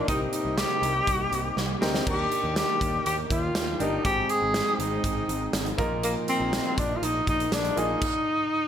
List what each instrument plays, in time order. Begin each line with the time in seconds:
Already playing: analog synth pad A#3, grand piano D#4 F4 A#4
0.08 picked electric bass C2, grand piano C3 C4 D#4 G4 A#4, analog synth pad C3 G3 D#4, tenor saxophone D#4, kick, closed hi-hat
0.33 tenor saxophone D#4, closed hi-hat
0.45 picked electric bass C2
0.58 tenor saxophone G4, snare, closed hi-hat
0.82 picked electric bass C2, closed hi-hat
1.07 picked electric bass C2, kick, closed hi-hat
1.32 picked electric bass C2, closed hi-hat
1.57 picked electric bass C2, snare
1.81 picked electric bass D2, grand piano C4 D#4 G4 A#4, snare
1.94 snare
2.06 picked electric bass D#2, analog synth pad D#3 A#3 D5 G5, grand piano D#3 D4 D#4 G4 A#4, tenor saxophone G4, kick, crash
2.32 closed hi-hat
2.44 picked electric bass D#2
2.56 tenor saxophone G4, snare, closed hi-hat
2.81 picked electric bass D#2, kick, closed hi-hat
3.06 picked electric bass D#2, tenor saxophone G4, closed hi-hat
3.31 picked electric bass D#2, tenor saxophone F4, kick, closed hi-hat
3.55 picked electric bass D#2, snare, closed hi-hat
3.80 picked electric bass G1, grand piano D4 D#4 G4 A#4, tenor saxophone D#4, closed hi-hat
4.04 picked electric bass G#1, grand piano G#2 C4 D#4 G#4 G5, analog synth pad G#3 C4, tenor saxophone G4, kick, closed hi-hat
4.29 tenor saxophone G#4, closed hi-hat
4.42 picked electric bass G#1
4.54 snare, closed hi-hat
4.79 picked electric bass G#1, tenor saxophone D#4, closed hi-hat
5.04 picked electric bass G#1, kick, closed hi-hat
5.28 picked electric bass G#1, closed hi-hat
5.53 picked electric bass G#1, snare, closed hi-hat
5.66 closed hi-hat
5.78 picked electric bass A#1, grand piano A#2 A#3 D#4 F4 A#4, analog synth pad F3 A#3 D#4, kick, closed hi-hat
6.03 tenor saxophone A#3, closed hi-hat
6.28 tenor saxophone C4, closed hi-hat
6.40 picked electric bass A#1
6.53 snare, closed hi-hat
6.78 picked electric bass A#1, tenor saxophone D4, kick, closed hi-hat
6.96 tenor saxophone F4
7.02 picked electric bass A#1, tenor saxophone D#4, closed hi-hat
7.27 picked electric bass A#1, tenor saxophone D#4, kick, closed hi-hat
7.40 closed hi-hat
7.52 picked electric bass A#1, tenor saxophone D4, snare, closed hi-hat
7.65 closed hi-hat
7.76 picked electric bass A#1, grand piano A#3 D#4 F4 G#4, tenor saxophone D#4, closed hi-hat
8.02 kick, crash